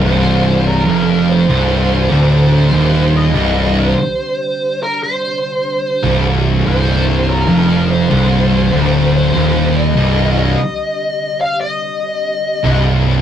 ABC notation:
X:1
M:4/4
L:1/16
Q:1/4=73
K:Cm
V:1 name="Lead electric guitar"
c3 B3 c6 c3 e- | e2 c4- c B c6 z2 | c3 B3 c6 c3 e- | e2 e4- e f e6 z2 |]
V:2 name="String machine" clef=bass
[C,D,G,]16- | [C,D,G,]16- | [C,D,G,]16- | [C,D,G,]16 |]
V:3 name="Distorted electric guitar" clef=bass
C,,4 F,,3 C,,3 D,,3 E,,3 | C,,3 z8 z2 C,,3 | C,,4 F,,3 C,,3 D,,3 E,,3 | C,,3 z8 z2 C,,3 |]
V:4 name="Distorted electric guitar" clef=bass
C,,4 F,,3 C,,3 D,,3 E,,3 | C,,3 z8 z2 C,,3 | C,,4 F,,3 C,,3 D,,3 E,,3 | C,,3 z8 z2 C,,3 |]
V:5 name="Distorted electric guitar" clef=bass
C,,4 F,,3 C,,3 D,,3 E,,3 | C,,3 z8 z2 C,,3 | C,,4 F,,3 C,,3 D,,3 E,,3 | C,,3 z8 z2 C,,3 |]
V:6 name="Picked electric bass" clef=bass
C,,,4 F,,,3 C,,,3 D,,,3 E,,,3 | C,,,3 z8 z2 C,,,3 | C,,,4 F,,,3 C,,,3 D,,,3 E,,,3 | C,,,3 z8 z2 C,,,3 |]